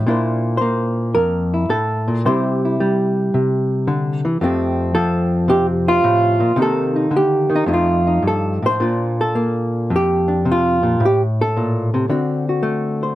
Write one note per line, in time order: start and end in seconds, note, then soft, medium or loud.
0.07 1.16 A#2 medium
0.07 0.60 A#3 soft
0.07 2.24 D4 soft
0.07 1.53 E4 soft
0.07 0.57 C5 soft
0.57 2.24 A#3 medium
0.57 1.14 C5 medium
1.15 1.69 F2 medium
1.15 1.70 A#4 medium
1.54 2.27 E4 soft
1.69 2.07 A2 medium
1.69 2.25 A4 medium
2.08 2.25 A#2 medium
2.25 3.33 C3 medium
2.25 2.80 G3 soft
2.25 4.43 C4 soft
2.25 2.65 E4 soft
2.25 3.71 C5 medium
2.65 4.40 E4 soft
2.80 4.24 G3 medium
3.34 4.39 C3 medium
3.88 4.24 D3 medium
4.25 4.41 E3 medium
4.41 6.03 F2 medium
4.41 4.94 F3 soft
4.41 6.57 A3 soft
4.41 6.58 C4 soft
4.41 4.94 G4 soft
4.95 6.56 F3 medium
4.95 5.49 A4 medium
5.48 6.39 C3 medium
5.48 5.66 G4 loud
5.88 6.59 F4 medium
6.04 6.41 A2 medium
6.40 6.56 A#2 medium
6.56 7.10 C3 medium
6.56 7.48 D#3 soft
6.56 7.66 A#3 soft
6.56 6.95 D#4 soft
6.62 7.15 A4 medium
6.96 7.51 D#4 soft
7.11 7.50 D3 medium
7.16 7.70 G4 medium
7.50 7.67 D#3 medium
7.55 7.67 D#4 medium
7.66 8.22 F2 medium
7.66 8.78 F3 soft
7.66 8.79 A3 soft
7.66 8.06 D#4 soft
7.73 8.27 F4 medium
8.07 8.79 D#4 soft
8.22 8.62 G2 medium
8.27 8.65 A4 medium
8.62 8.80 A2 soft
8.62 9.20 C5 medium
8.80 9.92 A#2 medium
8.80 10.27 D4 soft
8.80 9.93 F4 soft
9.21 10.48 A4 medium
9.35 10.99 A#3 medium
9.90 11.00 F2 medium
9.96 11.04 G4 medium
10.28 10.99 D4 soft
10.45 10.82 C3 medium
10.52 11.04 F4 medium
10.83 11.01 A#2 medium
11.00 12.08 A2 medium
11.05 11.21 G4 medium
11.41 13.02 A4 medium
11.57 11.94 A#2 medium
11.94 12.09 C3 medium
12.10 13.15 D3 medium
12.10 13.15 C4 soft
12.10 12.48 F#4 soft
12.49 13.15 F#4 soft
12.63 13.15 A3 medium
13.03 13.15 C5 soft